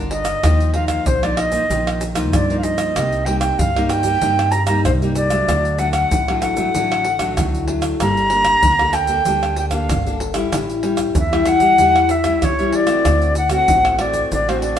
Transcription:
Already playing: G1 D3
0.00 D4 F4 A#4
0.10 D#5, pandeiro, surdo
0.25 pandeiro, tamborim, shaker
0.43 D#2 D#3 F3 A#3 D#4, pandeiro, tamborim, shaker, surdo
0.60 pandeiro, shaker
0.74 F3 A#3 D#4 F5, pandeiro
0.88 F5, pandeiro, tamborim, shaker, surdo
1.06 A#1 A#2 C5, pandeiro, shaker, surdo
1.23 F3 A#3 D#4 D5, pandeiro, tamborim, shaker, surdo
1.37 D#5, pandeiro, tamborim
1.52 F3 A#3 D#4, pandeiro, shaker, surdo
1.69 A#1 D#3 F3 A#3 D#4, pandeiro, shaker, surdo
1.87 pandeiro, tamborim, shaker
2.01 pandeiro, shaker
2.15 F3 A#3 D#4, pandeiro, tamborim, shaker, surdo
2.32 G2 A#2 D5, pandeiro, tamborim, shaker, surdo
2.50 F3 A#3 D#4, pandeiro, shaker
2.58 F5
2.63 D#5, pandeiro, shaker
2.78 pandeiro, tamborim, shaker
2.96 C2 C3 G3 A#3 D#4, pandeiro, tamborim, shaker, surdo
3.12 pandeiro, shaker
3.25 G3 A#3 D#4 G5, pandeiro
3.39 G5, pandeiro, tamborim, shaker, surdo
3.58 G2 F5, pandeiro, shaker, surdo
3.76 G3 A#3 D#4, pandeiro, tamborim, shaker, surdo
3.89 G5, pandeiro, tamborim, shaker
4.03 G3 A#3 D#4, pandeiro, shaker, surdo
4.21 G2 C3 G3 A#3 D#4, pandeiro, shaker, surdo
4.39 pandeiro, tamborim, shaker
4.51 A#5, pandeiro, shaker
4.66 G3 A#3 D#4 A#5, pandeiro, tamborim, shaker, surdo
4.84 C2 G2 C5, pandeiro, tamborim, shaker, surdo
5.02 G3 A#3 D#4, pandeiro, shaker
5.15 D5, pandeiro, shaker
5.30 F#3 A3 D4, pandeiro, tamborim, shaker
5.48 D2 D3, pandeiro, tamborim, shaker, surdo
5.65 pandeiro, shaker
5.78 F#3 A3 D4 F#5, pandeiro, shaker
5.92 F#5, pandeiro, tamborim, shaker, surdo
6.11 A1 A2, pandeiro, shaker, surdo
6.28 F#3 A3 D4, pandeiro, tamborim, shaker, surdo
6.41 F#5, pandeiro, tamborim, shaker
6.57 F#3 A3 D4, pandeiro, shaker, surdo
6.74 A1 D3 F#3 A3 D4, pandeiro, shaker, surdo
6.92 pandeiro, tamborim, shaker
7.05 pandeiro
7.19 F#3 A3 D4, pandeiro, tamborim, shaker, surdo
7.37 D2 A2, pandeiro, tamborim, shaker, surdo
7.54 pandeiro, shaker
7.68 F#3 A3 D4, pandeiro
7.82 pandeiro, tamborim, shaker
8.00 G1 G3 A#3 D4 A4 A#5, pandeiro, tamborim, shaker, surdo
8.17 pandeiro, shaker
8.30 A#3 D4, pandeiro
8.45 pandeiro, tamborim, shaker, surdo
8.63 D2 D3, pandeiro, shaker, surdo
8.79 A#3 D4 A4, pandeiro, tamborim, shaker, surdo
8.93 G5, pandeiro, tamborim, shaker
9.07 A#3 D4 A4, pandeiro, shaker, surdo
9.25 D2 G3 A#3 D4 A4, pandeiro, shaker, surdo
9.43 pandeiro, tamborim, shaker
9.56 G5, pandeiro
9.71 A#3 D4 A4 F5, pandeiro, tamborim, shaker, surdo
9.89 G1 D3, pandeiro, tamborim, shaker, surdo
10.06 A#3 D4 A4, pandeiro, shaker
10.20 pandeiro, surdo
10.34 G3 C#4 E4, pandeiro, tamborim, shaker
10.52 A1 A2, pandeiro, tamborim, shaker, surdo
10.69 pandeiro, shaker
10.83 G3 C#4 E4, pandeiro
10.97 pandeiro, tamborim, shaker, surdo
11.15 E2 E3 E5, pandeiro, shaker, surdo
11.32 G3 C#4 E4, pandeiro, tamborim, shaker, surdo
11.46 F#5, pandeiro, tamborim, shaker
11.60 G3 C#4 E4, pandeiro, shaker, surdo
11.78 E2 A2 G3 C#4 E4, pandeiro, shaker, surdo
11.96 pandeiro, tamborim, shaker
12.09 E5, pandeiro, shaker
12.24 G3 C#4 E4, pandeiro, tamborim, shaker, surdo
12.42 A1 E3 C#5, pandeiro, tamborim, shaker, surdo
12.59 G3 C#4 E4, pandeiro, shaker
12.72 D5, pandeiro, surdo
12.87 A3 C4 F#4, pandeiro, tamborim, shaker
13.05 D2 D3, pandeiro, tamborim, shaker, surdo
13.22 pandeiro, shaker
13.35 F#5, pandeiro, shaker
13.49 A3 C4 F#4 F#5, pandeiro, tamborim, shaker, surdo
13.68 A1 A2, pandeiro, shaker, surdo
13.85 pandeiro, tamborim, shaker, surdo
13.99 A3 C4 F#4 D5, pandeiro, tamborim
14.13 pandeiro, shaker, surdo
14.31 A1 D3 D5, pandeiro, shaker, surdo
14.48 A3 C4 F#4 C5, pandeiro, tamborim, shaker
14.62 D5, pandeiro

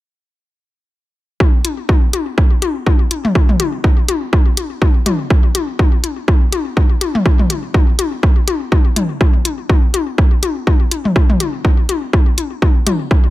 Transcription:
1.40 kick, high tom
1.65 closed hi-hat, high tom
1.89 kick, high tom
2.13 closed hi-hat, high tom
2.38 kick, high tom
2.62 closed hi-hat, high tom
2.86 kick, high tom
3.11 closed hi-hat, high tom
3.25 mid tom
3.35 kick, high tom
3.49 mid tom
3.60 closed hi-hat, high tom
3.84 kick, high tom
4.08 closed hi-hat, high tom
4.33 kick, high tom
4.57 closed hi-hat, high tom
4.82 kick, high tom
5.06 closed hi-hat, mid tom, high tom
5.30 kick, high tom
5.55 closed hi-hat, high tom
5.79 kick, high tom
6.04 closed hi-hat, high tom
6.28 kick, high tom
6.52 closed hi-hat, high tom
6.77 kick, high tom
7.01 closed hi-hat, high tom
7.15 mid tom
7.26 kick, high tom
7.39 mid tom
7.50 closed hi-hat, high tom
7.74 kick, high tom
7.99 closed hi-hat, high tom
8.23 kick, high tom
8.48 closed hi-hat, high tom
8.72 kick, high tom
8.96 closed hi-hat, mid tom, high tom
9.21 kick, high tom
9.45 closed hi-hat, high tom
9.69 kick, high tom
9.94 closed hi-hat, high tom
10.18 kick, high tom
10.43 closed hi-hat, high tom
10.67 kick, high tom
10.91 closed hi-hat, high tom
11.05 mid tom
11.16 kick, high tom
11.30 mid tom
11.40 closed hi-hat, high tom
11.65 kick, high tom
11.89 closed hi-hat, high tom
12.13 kick, high tom
12.38 closed hi-hat, high tom
12.62 kick, high tom
12.87 closed hi-hat, mid tom, high tom
13.11 kick, high tom

